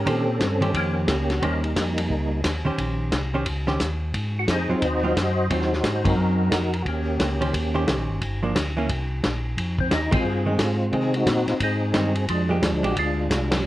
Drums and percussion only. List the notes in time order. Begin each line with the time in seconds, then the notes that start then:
0.06 kick, ride
0.40 kick, snare, hi-hat pedal, ride
0.62 ride
0.74 kick, ride
1.08 kick, snare, hi-hat pedal, ride
1.30 snare, ride
1.42 kick, ride
1.64 ride
1.76 kick, snare, hi-hat pedal, ride
1.98 ride
2.10 kick
2.44 kick, snare, hi-hat pedal, ride
2.78 kick, ride
3.12 kick, snare, hi-hat pedal, ride
3.46 kick, ride
3.67 snare
3.80 kick, snare, hi-hat pedal, ride
4.14 kick, ride
4.48 kick, snare, hi-hat pedal, ride
4.82 kick, ride
5.16 kick, snare, hi-hat pedal, ride
5.50 kick, ride
5.61 snare
5.73 snare
5.84 kick, snare, hi-hat pedal, ride
6.05 kick, ride
6.52 kick, snare, hi-hat pedal, ride
6.74 ride
6.86 kick, ride
7.20 kick, snare, hi-hat pedal, ride
7.42 ride
7.54 kick, ride
7.87 kick, snare, hi-hat pedal, ride
8.21 kick, ride
8.55 kick, snare, hi-hat pedal, ride
8.89 kick, ride
9.23 kick, snare, hi-hat pedal, ride
9.57 kick, ride
9.78 kick
9.91 kick, snare, hi-hat pedal, ride
10.12 kick, ride
10.59 kick, snare, hi-hat pedal, ride
10.93 kick, ride
11.14 ride
11.27 kick, snare, hi-hat pedal, ride
11.48 snare, ride
11.60 kick, ride
11.94 kick, snare, hi-hat pedal, ride
12.15 ride
12.28 kick, ride
12.62 kick, snare, hi-hat pedal, ride
12.84 ride
12.96 kick, ride
13.30 kick, snare, hi-hat pedal, ride
13.51 snare, ride